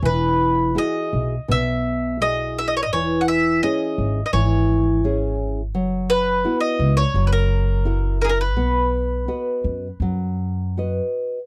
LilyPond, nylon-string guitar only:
\new Staff \with { instrumentName = "Nylon-string guitar" } { \time 4/4 \key b \major \tempo 4 = 84 e4 <e' fis' gis'>4 b,4 <e' fis' gis'>4 | e4 <cis' e' gis'>4 e4 <cis' e' gis'>4 | fis4 <b e' fis'>4 fis4 <e' fis' ais'>4 | b4 <fis' b' dis''>4 fis4 <fis' b' dis''>4 | }